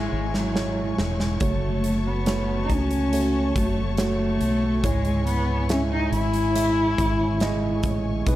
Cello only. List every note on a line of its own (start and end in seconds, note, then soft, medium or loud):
0.00 0.38 G#3 medium
0.36 0.99 F#3 medium
1.44 2.08 A3 medium
2.07 2.64 B3 medium
2.65 2.73 D#4 medium
2.71 3.56 C#4 medium
3.57 3.96 A3 medium
3.98 4.86 A3 medium
4.84 5.26 G#3 medium
5.27 5.67 B3 medium
5.71 5.81 C#4 medium
5.92 6.12 D#4 medium
6.13 7.80 E4 loud
8.29 8.36 G#3 medium